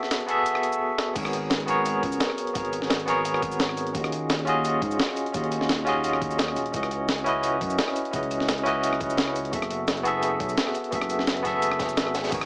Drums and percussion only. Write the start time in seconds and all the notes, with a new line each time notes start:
0.03 snare
0.11 snare, closed hi-hat, cabasa
0.20 closed hi-hat
0.29 closed hi-hat, cabasa
0.46 closed hi-hat, cabasa
0.55 cross-stick
0.63 closed hi-hat, cabasa
0.73 cabasa
0.98 snare
1.16 kick, closed hi-hat, crash, cabasa
1.25 cross-stick, closed hi-hat
1.33 closed hi-hat
1.50 snare, closed hi-hat, cabasa
1.60 closed hi-hat
1.68 closed hi-hat, cabasa
1.86 closed hi-hat, cabasa
2.03 kick, closed hi-hat
2.12 closed hi-hat, cabasa
2.20 snare, closed hi-hat, cabasa
2.29 cross-stick, snare
2.38 closed hi-hat, cabasa
2.47 closed hi-hat
2.55 kick, closed hi-hat, cabasa
2.65 closed hi-hat
2.73 closed hi-hat, cabasa
2.82 snare
2.90 snare, closed hi-hat, cabasa
3.00 closed hi-hat
3.08 snare, closed hi-hat, cabasa
3.25 closed hi-hat, cabasa
3.34 cross-stick
3.42 kick, closed hi-hat, cabasa
3.52 closed hi-hat, cabasa
3.60 snare, closed hi-hat, cabasa
3.69 cross-stick
3.77 closed hi-hat, cabasa
3.87 closed hi-hat
3.95 kick, closed hi-hat, cabasa
4.04 cross-stick, closed hi-hat
4.12 closed hi-hat
4.30 snare, closed hi-hat, cabasa
4.39 closed hi-hat
4.47 closed hi-hat, cabasa
4.65 closed hi-hat, cabasa
4.82 kick, closed hi-hat
4.91 closed hi-hat, cabasa
5.00 snare, closed hi-hat, cabasa
5.08 cross-stick, snare
5.16 closed hi-hat, cabasa
5.26 closed hi-hat
5.34 kick, closed hi-hat, cabasa
5.44 closed hi-hat
5.52 closed hi-hat, cabasa
5.61 snare
5.69 snare, closed hi-hat, cabasa
5.79 closed hi-hat
5.87 snare, closed hi-hat, cabasa
6.04 closed hi-hat, cabasa
6.13 cross-stick
6.22 kick, closed hi-hat, cabasa
6.31 closed hi-hat, cabasa
6.38 snare, closed hi-hat, cabasa
6.48 cross-stick
6.56 closed hi-hat, cabasa
6.66 closed hi-hat
6.74 kick, closed hi-hat, cabasa
6.83 cross-stick, closed hi-hat
6.91 closed hi-hat
7.09 snare, closed hi-hat, cabasa
7.18 closed hi-hat
7.26 closed hi-hat, cabasa
7.43 closed hi-hat, cabasa
7.61 kick, closed hi-hat
7.70 closed hi-hat, cabasa
7.79 snare, closed hi-hat, cabasa
7.87 cross-stick, snare
7.96 closed hi-hat, cabasa
8.05 closed hi-hat
8.13 kick, closed hi-hat, cabasa
8.23 closed hi-hat
8.31 closed hi-hat, cabasa
8.40 snare
8.48 snare, closed hi-hat, cabasa
8.58 closed hi-hat
8.65 snare, closed hi-hat, cabasa
8.83 closed hi-hat, cabasa
8.93 cross-stick
9.00 kick, closed hi-hat, cabasa
9.10 closed hi-hat, cabasa
9.17 snare, closed hi-hat, cabasa
9.28 cross-stick
9.35 closed hi-hat, cabasa
9.45 closed hi-hat
9.53 kick, closed hi-hat, cabasa
9.62 cross-stick, closed hi-hat
9.70 closed hi-hat
9.88 snare, closed hi-hat, cabasa
9.97 closed hi-hat
10.05 closed hi-hat, cabasa
10.23 closed hi-hat, cabasa
10.40 kick, closed hi-hat
10.49 closed hi-hat, cabasa
10.58 snare, closed hi-hat, cabasa
10.67 cross-stick, snare
10.74 closed hi-hat, cabasa
10.84 closed hi-hat
10.92 kick, closed hi-hat, cabasa
11.01 cross-stick, closed hi-hat
11.10 closed hi-hat, cabasa
11.19 snare
11.27 snare, closed hi-hat, cabasa
11.37 closed hi-hat
11.45 kick, snare, closed hi-hat, cabasa
11.62 closed hi-hat, cabasa
11.71 cross-stick
11.79 kick, snare, closed hi-hat, cabasa
11.89 cabasa
11.97 snare, closed hi-hat, cabasa
12.07 cross-stick
12.15 snare, closed hi-hat, cabasa
12.24 snare, closed hi-hat
12.28 snare, closed hi-hat
12.32 kick, closed hi-hat, crash, cabasa
12.41 cross-stick, closed hi-hat